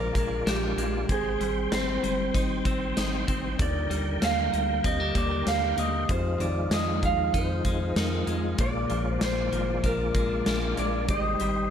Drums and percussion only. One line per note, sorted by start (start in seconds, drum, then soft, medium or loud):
0.15 kick medium
0.15 closed hi-hat medium
0.47 snare loud
0.47 closed hi-hat medium
0.78 closed hi-hat medium
1.09 kick loud
1.09 closed hi-hat medium
1.41 closed hi-hat soft
1.72 snare loud
1.72 closed hi-hat medium
2.04 closed hi-hat soft
2.35 kick medium
2.35 closed hi-hat medium
2.65 kick medium
2.65 closed hi-hat soft
2.97 snare loud
2.97 closed hi-hat medium
3.28 kick medium
3.28 closed hi-hat medium
3.59 kick loud
3.59 closed hi-hat medium
3.91 closed hi-hat soft
4.22 snare loud
4.22 closed hi-hat medium
4.54 closed hi-hat soft
4.84 kick medium
4.84 closed hi-hat medium
5.15 kick medium
5.15 closed hi-hat medium
5.47 snare loud
5.47 closed hi-hat medium
5.78 closed hi-hat soft
6.09 kick loud
6.09 closed hi-hat medium
6.40 closed hi-hat soft
6.71 snare loud
6.71 closed hi-hat medium
7.03 kick medium
7.03 closed hi-hat soft
7.34 kick medium
7.34 closed hi-hat medium
7.65 kick medium
7.65 closed hi-hat medium
7.96 snare loud
7.96 closed hi-hat medium
8.27 closed hi-hat medium
8.58 kick loud
8.58 closed hi-hat medium
8.90 closed hi-hat soft
9.21 snare loud
9.21 closed hi-hat medium
9.53 closed hi-hat soft
9.84 kick medium
9.84 closed hi-hat medium
10.15 kick medium
10.15 closed hi-hat medium
10.46 snare loud
10.46 closed hi-hat medium
10.77 closed hi-hat soft
11.08 kick loud
11.08 closed hi-hat medium
11.40 closed hi-hat soft